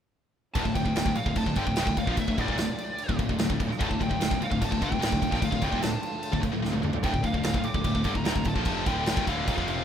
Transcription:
0.54 picked electric bass D1, distorted electric guitar D2 A2, string section D3 A3 D4 F4, lead electric guitar A5, kick, crash
0.65 picked electric bass D1, distorted electric guitar D2 A2, kick
0.75 picked electric bass D1, distorted electric guitar D2 A2, lead electric guitar G5, kick, crash
0.86 picked electric bass D1, distorted electric guitar D2 A2, kick
0.96 picked electric bass D1, distorted electric guitar D2 A2, snare, crash
1.06 picked electric bass D1, distorted electric guitar D2 A2, kick
1.15 lead electric guitar F5, muted distorted electric guitar stroke, muted picked electric bass stroke, crash
1.26 picked electric bass D1, distorted electric guitar D2 A2, kick
1.36 picked electric bass D1, distorted electric guitar D2 A2, lead electric guitar A5, kick, crash
1.46 picked electric bass D1, distorted electric guitar D2 A2, kick
1.56 picked electric bass G1, distorted electric guitar G2 D3, lead electric guitar G5, kick, crash
1.67 picked electric bass D1, distorted electric guitar D2 A2, kick
1.76 picked electric bass D1, distorted electric guitar D2 A2, snare, crash
1.87 picked electric bass D1, distorted electric guitar D2 A2, kick
1.97 picked electric bass D1, distorted electric guitar D2 A2, lead electric guitar F5, kick, crash
2.07 picked electric bass A#1, distorted electric guitar A#2 F3, kick
2.17 picked electric bass D1, distorted electric guitar D2 A2, lead electric guitar E5, kick, crash
2.28 picked electric bass D1, distorted electric guitar D2 A2, kick
2.37 picked electric bass D1, distorted electric guitar D2 A2, lead electric guitar D5, kick, crash
2.47 picked electric bass D#1, distorted electric guitar D#2 A#2, kick
2.58 picked electric bass D1, distorted electric guitar D2 A2, snare, crash
2.78 crash
2.98 crash
3.09 picked electric bass D1, distorted electric guitar D2 A2, kick
3.19 picked electric bass D1, distorted electric guitar D2 A2, kick, crash
3.29 picked electric bass D1, distorted electric guitar D2 A2, kick
3.38 picked electric bass D1, distorted electric guitar D2 A2, snare, crash
3.50 picked electric bass D1, distorted electric guitar D2 A2, kick
3.60 picked electric bass D1, distorted electric guitar D2 A2, kick, crash
3.70 muted distorted electric guitar stroke, muted picked electric bass stroke, snare
3.79 picked electric bass D1, distorted electric guitar D2 A2, lead electric guitar A5, kick, crash
3.90 picked electric bass D1, distorted electric guitar D2 A2, kick
4.00 picked electric bass D1, distorted electric guitar D2 A2, lead electric guitar G5, kick, crash
4.10 picked electric bass D1, distorted electric guitar D2 A2, kick
4.20 picked electric bass D1, distorted electric guitar D2 A2, snare, crash
4.30 picked electric bass D1, distorted electric guitar D2 A2, kick
4.41 lead electric guitar F5, muted distorted electric guitar stroke, muted picked electric bass stroke, crash
4.50 picked electric bass D1, distorted electric guitar D2 A2, kick
4.61 picked electric bass D1, distorted electric guitar D2 A2, lead electric guitar A5, kick, crash
4.71 picked electric bass D1, distorted electric guitar D2 A2, kick
4.81 picked electric bass G1, distorted electric guitar G2 D3, lead electric guitar G5, kick, crash
4.90 picked electric bass D1, distorted electric guitar D2 A2, kick
4.99 picked electric bass D1, distorted electric guitar D2 A2, snare, crash
5.10 picked electric bass D1, distorted electric guitar D2 A2, kick
5.22 picked electric bass D1, distorted electric guitar D2 A2, kick, crash
5.32 picked electric bass A#1, distorted electric guitar A#2 F3, kick, snare
5.41 picked electric bass D1, distorted electric guitar D2 A2, lead electric guitar F5, kick, crash
5.51 picked electric bass D1, distorted electric guitar D2 A2, kick
5.61 picked electric bass D1, distorted electric guitar D2 A2, lead electric guitar G5, kick, crash
5.71 picked electric bass D#1, distorted electric guitar D#2 A#2, kick
5.81 picked electric bass D1, distorted electric guitar D2 A2, lead electric guitar A5, snare, crash
6.03 crash
6.23 crash
6.32 picked electric bass D1, distorted electric guitar D2 A2, kick
6.41 picked electric bass D1, distorted electric guitar D2 A2, kick, crash
6.52 picked electric bass D1, distorted electric guitar D2 A2
6.62 picked electric bass D1, distorted electric guitar D2 A2, snare
6.72 picked electric bass D1, distorted electric guitar D2 A2, high tom
6.82 picked electric bass D1, distorted electric guitar D2 A2, mid tom
6.93 muted picked electric bass stroke, muted distorted electric guitar stroke, floor tom
7.03 picked electric bass D1, distorted electric guitar D2 A2, lead electric guitar G5, kick, crash
7.13 picked electric bass D1, distorted electric guitar D2 A2, kick
7.23 picked electric bass D1, distorted electric guitar D2 A2, lead electric guitar F5, kick, crash
7.34 picked electric bass D1, distorted electric guitar D2 A2, kick
7.43 picked electric bass D1, distorted electric guitar D2 A2, snare, crash
7.53 picked electric bass D1, distorted electric guitar D2 A2, kick
7.63 lead electric guitar D6, muted distorted electric guitar stroke, muted picked electric bass stroke, crash
7.74 picked electric bass D1, distorted electric guitar D2 A2, kick
7.84 picked electric bass D1, distorted electric guitar D2 A2, kick, crash
7.95 picked electric bass D1, distorted electric guitar D2 A2, kick
8.04 picked electric bass G1, distorted electric guitar G2 D3, kick, crash
8.15 picked electric bass D1, distorted electric guitar D2 A2, lead electric guitar A#5, kick
8.25 picked electric bass D1, distorted electric guitar D2 A2, snare, crash
8.35 picked electric bass D1, distorted electric guitar D2 A2, kick
8.45 picked electric bass D1, distorted electric guitar D2 A2, lead electric guitar A5, kick, crash
8.55 picked electric bass A#1, distorted electric guitar A#2 F3, kick
8.65 picked electric bass F1, distorted electric guitar F2 C3 F3, kick, crash
8.86 picked electric bass D1, distorted electric guitar D2 A2 D3, lead electric guitar G5, kick, crash
9.06 snare, crash
9.17 picked electric bass D#1, distorted electric guitar D#2 A#2, kick
9.26 picked electric bass D1, distorted electric guitar D2 A2 D3, lead electric guitar F5, kick, crash
9.47 picked electric bass D#1, distorted electric guitar D#2 A#2, lead electric guitar F5, kick, crash
9.57 picked electric bass F1, distorted electric guitar F2 C3 F3, kick
9.68 crash

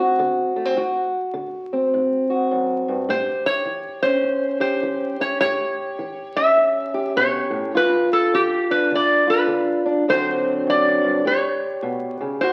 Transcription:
Already playing: steel-string acoustic guitar A2 C4 F#4
0.19 steel-string acoustic guitar D3
0.56 steel-string acoustic guitar A3
0.65 steel-string acoustic guitar C4
0.76 steel-string acoustic guitar D2 F#4
1.34 steel-string acoustic guitar D3
1.73 steel-string acoustic guitar C4
1.94 steel-string acoustic guitar A2
2.30 steel-string acoustic guitar F#4
2.51 steel-string acoustic guitar F#2
2.88 steel-string acoustic guitar G2
3.09 steel-string acoustic guitar A2 G4, resonator guitar played with a steel bar C5
3.46 resonator guitar played with a steel bar C#5
3.65 steel-string acoustic guitar E3
4.02 steel-string acoustic guitar C#4, resonator guitar played with a steel bar C5
4.24 steel-string acoustic guitar E2
4.60 steel-string acoustic guitar G4, resonator guitar played with a steel bar C5
4.83 steel-string acoustic guitar E3
5.20 steel-string acoustic guitar C#4, resonator guitar played with a steel bar C#5
5.41 steel-string acoustic guitar A2 G4, resonator guitar played with a steel bar C#5
5.99 steel-string acoustic guitar E3
6.36 steel-string acoustic guitar C#4, resonator guitar played with a steel bar E5
6.57 steel-string acoustic guitar E2
6.94 steel-string acoustic guitar G4
7.16 steel-string acoustic guitar B2, resonator guitar played with a steel bar C#5
7.50 steel-string acoustic guitar A2
7.75 steel-string acoustic guitar G2 F4, resonator guitar played with a steel bar B4
8.13 resonator guitar played with a steel bar A4
8.33 steel-string acoustic guitar D3, resonator guitar played with a steel bar G4
8.70 steel-string acoustic guitar D4, resonator guitar played with a steel bar B4
8.91 steel-string acoustic guitar D3
8.95 resonator guitar played with a steel bar D5
9.27 steel-string acoustic guitar F4, resonator guitar played with a steel bar B4
9.47 steel-string acoustic guitar D3
9.86 steel-string acoustic guitar D4
10.08 steel-string acoustic guitar D2 D3 F#3 C4 F#4, resonator guitar played with a steel bar C5
10.67 steel-string acoustic guitar F#2, resonator guitar played with a steel bar D5
11.03 steel-string acoustic guitar G2
11.25 steel-string acoustic guitar A2 G4, resonator guitar played with a steel bar C#5
11.82 steel-string acoustic guitar B2
12.21 steel-string acoustic guitar C#3
12.41 steel-string acoustic guitar D2 F#4, resonator guitar played with a steel bar C5

